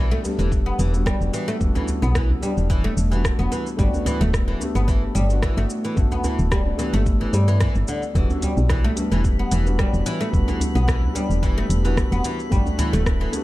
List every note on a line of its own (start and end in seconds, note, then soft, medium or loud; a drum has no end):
0.00 0.18 B1 loud
0.00 0.11 E3 medium
0.00 0.21 G3 medium
0.00 0.21 B3 medium
0.00 0.22 D4 medium
0.00 0.23 F#4 medium
0.11 0.19 A3 loud
0.23 0.89 G3 medium
0.23 0.90 B3 medium
0.23 0.91 D4 medium
0.23 0.91 G4 medium
0.23 djembe slap medium
0.23 djembe tone medium
0.23 shaker medium
0.39 0.73 E1 medium
0.39 0.51 E3 medium
0.39 djembe slap soft
0.39 shaker soft
0.52 kick loud
0.52 shaker soft
0.66 0.78 B3 medium
0.79 1.14 E1 loud
0.79 0.93 E3 medium
0.79 djembe tone soft
0.79 shaker medium
0.92 1.57 G3 medium
0.92 1.58 B3 medium
0.92 1.58 D4 medium
0.92 djembe slap medium
0.92 shaker soft
0.96 1.59 F#4 medium
1.06 1.15 G3 medium
1.06 kick loud
1.06 cross-stick loud
1.06 shaker soft
1.21 1.30 E1 medium
1.21 shaker soft
1.34 1.47 E3 medium
1.34 shaker medium
1.48 1.55 A3 medium
1.48 shaker soft
1.59 1.71 E1 medium
1.59 2.39 G3 medium
1.59 2.39 B3 medium
1.59 2.40 D4 medium
1.59 kick loud
1.59 shaker soft
1.63 2.41 F#4 medium
1.75 1.87 E3 medium
1.75 djembe tone medium
1.75 djembe bass medium
1.75 shaker soft
1.88 djembe bass medium
1.88 shaker medium
2.02 2.36 B1 loud
2.02 2.14 B3 medium
2.02 shaker soft
2.15 2.29 E3 medium
2.15 kick loud
2.15 cross-stick loud
2.15 djembe slap medium
2.15 shaker soft
2.30 djembe bass medium
2.41 3.07 G3 medium
2.41 2.51 G3 medium
2.41 3.08 B3 medium
2.41 3.09 D4 medium
2.41 djembe slap medium
2.41 djembe tone medium
2.41 shaker medium
2.45 3.09 G4 medium
2.57 2.91 E1 medium
2.57 shaker soft
2.70 2.84 E3 loud
2.70 kick loud
2.70 shaker soft
2.84 2.92 A3 loud
2.97 3.32 E1 loud
2.97 shaker medium
3.10 3.24 E3 medium
3.10 3.75 G3 medium
3.10 3.76 B3 medium
3.10 3.76 D4 medium
3.10 3.77 F#4 medium
3.10 shaker soft
3.24 kick loud
3.24 cross-stick loud
3.24 shaker soft
3.39 3.48 E1 medium
3.39 3.50 B3 medium
3.39 shaker soft
3.51 3.66 E3 medium
3.51 djembe tone medium
3.51 shaker medium
3.67 shaker soft
3.77 3.89 G1 loud
3.77 3.87 G3 medium
3.77 4.57 A3 medium
3.77 4.58 B3 medium
3.77 4.58 D4 medium
3.77 kick loud
3.77 shaker soft
3.81 4.59 F#4 medium
3.93 djembe tone medium
3.93 djembe bass medium
3.93 shaker soft
4.05 4.20 E3 loud
4.05 djembe bass medium
4.05 shaker medium
4.21 4.55 D1 loud
4.21 4.28 A3 medium
4.21 shaker soft
4.34 kick loud
4.34 cross-stick loud
4.34 djembe slap soft
4.34 shaker soft
4.48 4.60 E3 medium
4.59 5.26 A3 medium
4.59 5.26 B3 medium
4.59 5.27 D4 medium
4.59 djembe slap medium
4.59 djembe tone medium
4.59 shaker medium
4.63 5.28 G4 medium
4.75 5.09 G1 medium
4.75 4.87 B3 medium
4.75 shaker soft
4.88 5.02 E3 medium
4.88 kick loud
4.88 shaker soft
5.15 5.50 G1 loud
5.15 5.24 G3 medium
5.15 djembe tone soft
5.15 shaker medium
5.29 5.93 A3 medium
5.29 5.94 B3 medium
5.29 5.95 D4 medium
5.29 djembe slap medium
5.29 shaker soft
5.33 5.96 F#4 medium
5.42 5.57 E3 medium
5.42 kick loud
5.42 cross-stick loud
5.42 shaker soft
5.57 5.66 G1 loud
5.57 5.65 A3 loud
5.57 shaker soft
5.70 shaker medium
5.84 5.97 E3 medium
5.84 shaker soft
5.95 6.07 G1 loud
5.95 6.75 A3 medium
5.95 6.76 B3 medium
5.95 6.76 D4 medium
5.95 kick loud
5.95 shaker soft
5.99 6.77 F#4 medium
6.12 6.23 B3 medium
6.12 djembe tone medium
6.12 djembe bass medium
6.12 shaker soft
6.24 6.38 E3 medium
6.24 djembe bass medium
6.24 shaker medium
6.39 6.73 D1 loud
6.39 shaker soft
6.51 6.60 G3 medium
6.51 kick loud
6.51 cross-stick loud
6.51 djembe slap soft
6.51 shaker soft
6.66 djembe bass medium
6.77 6.93 E3 medium
6.77 7.44 A3 medium
6.77 7.44 B3 medium
6.77 7.45 D4 medium
6.77 7.46 G4 medium
6.77 djembe slap medium
6.77 djembe tone medium
6.77 shaker medium
6.93 7.27 G1 medium
6.93 7.01 A3 loud
6.93 shaker soft
7.06 kick loud
7.06 shaker soft
7.21 7.33 E3 medium
7.33 7.68 G2 loud
7.33 7.47 G3 medium
7.33 shaker medium
7.48 7.59 E3 medium
7.48 shaker soft
7.60 7.75 E3 loud
7.60 kick loud
7.60 cross-stick medium
7.60 shaker soft
7.75 7.84 G1 medium
7.75 shaker soft
7.88 8.02 D3 medium
7.88 djembe tone medium
7.88 shaker medium
8.03 djembe tone soft
8.03 shaker soft
8.14 8.25 E1 loud
8.14 8.29 E3 medium
8.14 8.93 G3 medium
8.14 8.94 B3 medium
8.14 8.95 D4 medium
8.14 8.95 F#4 medium
8.14 13.44 B4 medium
8.14 13.44 B5 medium
8.14 kick loud
8.14 shaker soft
8.30 djembe tone medium
8.30 djembe bass medium
8.30 shaker soft
8.42 8.51 G3 medium
8.42 closed hi-hat medium
8.42 djembe bass loud
8.42 shaker medium
8.57 8.91 B1 loud
8.57 shaker soft
8.70 8.84 E3 loud
8.70 kick loud
8.70 cross-stick medium
8.70 shaker soft
8.84 8.92 A3 medium
8.95 9.62 G3 medium
8.95 9.63 B3 medium
8.95 9.63 D4 medium
8.95 9.64 G4 medium
8.95 closed hi-hat medium
8.95 djembe slap medium
8.95 djembe tone medium
8.95 shaker medium
9.12 9.45 E1 medium
9.12 9.24 E3 medium
9.12 shaker soft
9.24 kick loud
9.24 shaker soft
9.39 9.51 B3 medium
9.51 9.86 E1 loud
9.51 9.66 E3 medium
9.51 closed hi-hat medium
9.51 djembe tone soft
9.51 shaker medium
9.64 10.29 G3 medium
9.64 10.30 B3 medium
9.64 10.31 D4 medium
9.64 10.31 F#4 medium
9.64 djembe slap medium
9.64 shaker soft
9.79 9.87 G3 medium
9.79 kick loud
9.79 cross-stick medium
9.79 shaker soft
9.94 10.02 E1 loud
9.94 shaker soft
10.06 10.20 E3 loud
10.06 closed hi-hat medium
10.06 shaker medium
10.21 10.28 A3 medium
10.21 shaker soft
10.31 10.44 E1 loud
10.31 11.11 G3 medium
10.31 11.12 B3 medium
10.31 11.13 D4 medium
10.31 kick loud
10.31 shaker soft
10.35 11.13 F#4 medium
10.48 10.60 E3 medium
10.48 djembe tone medium
10.48 djembe bass medium
10.48 shaker soft
10.60 closed hi-hat medium
10.60 djembe bass medium
10.60 shaker medium
10.75 11.09 B1 loud
10.75 10.87 B3 medium
10.75 shaker soft
10.87 11.02 E3 medium
10.87 kick loud
10.87 cross-stick loud
10.87 djembe slap soft
10.87 shaker soft
11.02 djembe bass medium
11.13 11.80 G3 medium
11.13 11.24 G3 medium
11.13 11.81 B3 medium
11.13 11.81 D4 medium
11.13 11.82 G4 medium
11.13 closed hi-hat medium
11.13 djembe slap medium
11.13 djembe tone medium
11.13 shaker medium
11.30 11.63 E1 medium
11.30 shaker soft
11.43 11.57 E3 loud
11.43 kick medium
11.43 shaker soft
11.58 11.65 A3 loud
11.69 12.04 E1 loud
11.69 closed hi-hat medium
11.69 shaker medium
11.83 11.97 E3 medium
11.83 12.48 G3 medium
11.83 12.48 B3 medium
11.83 12.49 D4 medium
11.83 12.50 F#4 medium
11.83 shaker soft
11.97 kick loud
11.97 cross-stick medium
11.97 shaker soft
12.11 12.20 E1 loud
12.11 12.23 B3 medium
12.11 shaker soft
12.24 12.39 E3 medium
12.24 closed hi-hat medium
12.24 djembe tone medium
12.24 shaker medium
12.39 shaker soft
12.50 12.62 G1 loud
12.50 12.60 G3 medium
12.50 13.30 A3 medium
12.50 13.30 B3 medium
12.50 13.31 D4 medium
12.50 kick loud
12.50 shaker soft
12.54 13.32 F#4 medium
12.66 djembe tone medium
12.66 djembe bass medium
12.66 shaker soft
12.78 12.93 E3 loud
12.78 closed hi-hat medium
12.78 djembe bass medium
12.78 shaker medium
12.93 13.27 D1 loud
12.93 13.01 A3 medium
12.93 shaker soft
13.06 kick loud
13.06 cross-stick loud
13.06 djembe slap medium
13.06 shaker soft
13.21 13.33 E3 medium
13.32 13.44 A3 medium
13.32 13.44 B3 medium
13.32 13.44 D4 medium
13.32 closed hi-hat medium
13.32 djembe slap medium
13.32 djembe tone medium
13.32 shaker medium
13.36 13.44 G4 medium